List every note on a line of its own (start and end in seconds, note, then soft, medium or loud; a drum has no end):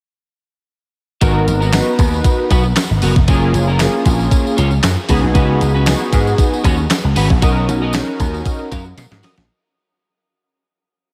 1.21 1.42 G#1 medium
1.21 1.59 B3 medium
1.21 1.45 B3 medium
1.21 1.60 D#4 medium
1.21 1.60 F#4 medium
1.21 1.46 F#4 medium
1.21 1.60 A#4 loud
1.21 1.46 A#4 loud
1.21 kick medium
1.21 closed hi-hat medium
1.21 tambourine soft
1.47 1.78 G#1 medium
1.47 muted clean electric guitar stroke soft
1.47 closed hi-hat medium
1.47 tambourine soft
1.60 1.72 B3 medium
1.60 1.72 F#4 medium
1.60 1.71 A#4 medium
1.60 tambourine soft
1.72 2.48 B3 medium
1.72 2.48 D#4 medium
1.72 2.48 F#4 medium
1.72 2.49 B4 medium
1.72 muted clean electric guitar stroke soft
1.72 snare loud
1.72 clap medium
1.72 closed hi-hat medium
1.72 tambourine loud
1.87 muted clean electric guitar stroke soft
1.99 2.19 D#2 medium
1.99 kick medium
1.99 closed hi-hat medium
1.99 tambourine medium
2.13 muted clean electric guitar stroke soft
2.13 tambourine soft
2.24 muted clean electric guitar stroke soft
2.24 kick loud
2.24 closed hi-hat medium
2.24 tambourine medium
2.38 muted clean electric guitar stroke soft
2.50 2.71 B1 medium
2.50 2.66 B3 medium
2.50 2.64 F#4 medium
2.50 2.64 B4 medium
2.50 kick medium
2.50 closed hi-hat medium
2.50 tambourine medium
2.63 muted clean electric guitar stroke soft
2.63 tambourine soft
2.76 muted clean electric guitar stroke soft
2.76 snare loud
2.76 clap medium
2.76 closed hi-hat loud
2.76 tambourine medium
2.90 3.00 G#1 medium
2.90 muted clean electric guitar stroke soft
3.02 3.13 F#1 medium
3.02 3.17 B3 medium
3.02 3.15 F#4 medium
3.02 3.14 A#4 medium
3.02 open hi-hat medium
3.02 tambourine soft
3.16 3.26 F1 medium
3.16 muted clean electric guitar stroke soft
3.16 kick medium
3.28 3.49 F#1 loud
3.28 3.66 A#3 medium
3.28 3.52 C#4 medium
3.28 3.67 C#4 medium
3.28 3.67 F4 medium
3.28 3.53 F4 medium
3.28 3.67 G#4 loud
3.28 3.53 A#4 medium
3.28 kick loud
3.28 closed hi-hat medium
3.28 tambourine soft
3.54 3.85 F#1 loud
3.54 muted clean electric guitar stroke soft
3.54 closed hi-hat medium
3.54 tambourine soft
3.68 3.79 C#4 medium
3.68 3.79 F4 soft
3.68 3.78 A#4 medium
3.79 4.55 A#3 medium
3.79 4.55 C#4 medium
3.79 4.56 F4 medium
3.79 4.56 G#4 loud
3.79 muted clean electric guitar stroke soft
3.79 snare loud
3.79 clap medium
3.79 closed hi-hat medium
3.79 tambourine medium
3.94 muted clean electric guitar stroke soft
4.06 4.26 A#1 medium
4.06 kick medium
4.06 closed hi-hat medium
4.06 tambourine medium
4.19 muted clean electric guitar stroke medium
4.19 tambourine soft
4.31 muted clean electric guitar stroke soft
4.31 kick loud
4.31 closed hi-hat medium
4.31 tambourine medium
4.45 muted clean electric guitar stroke soft
4.45 tambourine soft
4.57 4.78 C#2 medium
4.57 4.72 C#4 medium
4.57 4.71 F4 medium
4.57 4.70 C#5 medium
4.57 closed hi-hat medium
4.57 tambourine medium
4.71 muted clean electric guitar stroke medium
4.71 tambourine soft
4.83 4.95 F#2 medium
4.83 muted clean electric guitar stroke soft
4.83 snare loud
4.83 clap medium
4.83 closed hi-hat loud
4.83 tambourine loud
4.96 muted clean electric guitar stroke soft
5.09 5.20 C#2 loud
5.09 5.72 B3 loud
5.09 5.24 C#4 medium
5.09 5.72 D#4 medium
5.09 5.22 F#4 medium
5.09 5.72 F#4 medium
5.09 5.72 G#4 loud
5.09 5.21 B4 medium
5.09 kick medium
5.09 open hi-hat medium
5.09 tambourine medium
5.23 5.33 B1 medium
5.23 muted clean electric guitar stroke soft
5.34 5.56 C#2 loud
5.34 5.59 C#4 medium
5.34 5.59 F#4 medium
5.34 5.59 B4 medium
5.34 kick loud
5.34 closed hi-hat medium
5.34 tambourine medium
5.61 5.93 C#2 loud
5.61 muted clean electric guitar stroke soft
5.61 closed hi-hat medium
5.61 tambourine soft
5.74 5.85 C#4 soft
5.74 5.86 F#4 medium
5.74 5.85 B4 medium
5.86 6.62 B3 medium
5.86 6.62 D#4 medium
5.86 6.63 F#4 medium
5.86 6.63 G#4 medium
5.86 muted clean electric guitar stroke soft
5.86 snare loud
5.86 clap medium
5.86 closed hi-hat medium
5.86 tambourine loud
6.01 muted clean electric guitar stroke soft
6.13 6.33 G#2 medium
6.13 kick medium
6.13 closed hi-hat medium
6.13 tambourine medium
6.26 muted clean electric guitar stroke medium
6.26 tambourine soft
6.38 muted clean electric guitar stroke soft
6.38 kick loud
6.38 closed hi-hat medium
6.38 tambourine medium
6.52 muted clean electric guitar stroke soft
6.52 tambourine soft
6.64 6.85 D#2 medium
6.64 6.79 C#4 medium
6.64 6.77 F#4 medium
6.64 6.77 C#5 medium
6.64 kick medium
6.64 closed hi-hat medium
6.64 tambourine soft
6.77 muted clean electric guitar stroke soft
6.77 tambourine soft
6.90 muted clean electric guitar stroke soft
6.90 snare loud
6.90 clap medium
6.90 closed hi-hat loud
6.90 tambourine loud
7.04 7.14 C#2 medium
7.04 muted clean electric guitar stroke soft
7.16 7.27 G#1 medium
7.16 7.31 C#4 medium
7.16 7.30 F#4 medium
7.16 7.29 B4 loud
7.16 open hi-hat medium
7.16 tambourine medium
7.30 7.40 A#1 medium
7.30 muted clean electric guitar stroke soft
7.30 kick medium
7.42 7.63 B1 medium
7.42 7.81 C#4 medium
7.42 7.81 D#4 medium
7.42 7.66 F#4 medium
7.42 7.81 F#4 medium
7.42 7.66 A#4 medium
7.42 7.81 A#4 medium
7.42 7.67 D#5 medium
7.42 kick loud
7.42 closed hi-hat medium
7.42 tambourine medium
7.68 7.99 B1 loud
7.68 muted clean electric guitar stroke soft
7.68 closed hi-hat medium
7.68 tambourine soft
7.82 7.93 F#4 soft
7.82 7.93 A#4 medium
7.82 7.92 D#5 medium
7.93 8.69 C#4 medium
7.93 8.69 D#4 medium
7.93 8.69 F#4 medium
7.93 8.01 G#4 medium
7.93 muted clean electric guitar stroke soft
7.93 snare loud
7.93 clap medium
7.93 closed hi-hat medium
7.93 tambourine loud
8.00 8.73 A#4 medium
8.07 muted clean electric guitar stroke soft
8.20 8.40 D#2 medium
8.20 kick medium
8.20 closed hi-hat medium
8.20 tambourine medium
8.34 muted clean electric guitar stroke soft
8.34 tambourine soft
8.46 muted clean electric guitar stroke soft
8.46 kick loud
8.46 closed hi-hat medium
8.46 tambourine medium
8.59 muted clean electric guitar stroke soft
8.71 8.92 F#2 medium
8.71 8.87 F#4 medium
8.71 8.85 A#4 medium
8.71 8.85 F5 loud
8.71 kick medium
8.71 closed hi-hat medium
8.71 tambourine soft
8.84 muted clean electric guitar stroke soft
8.84 tambourine soft
8.97 9.08 B2 loud
8.97 muted clean electric guitar stroke soft
8.97 snare medium
8.97 closed hi-hat loud
8.97 tambourine medium
9.11 9.21 G#2 medium
9.11 muted clean electric guitar stroke soft
9.11 snare medium
9.23 9.38 F#4 medium
9.23 9.36 A#4 medium
9.23 9.35 D#5 medium
9.23 snare medium
9.23 open hi-hat medium
9.23 tambourine medium
9.37 9.47 A#1 medium
9.37 muted clean electric guitar stroke soft
9.37 snare medium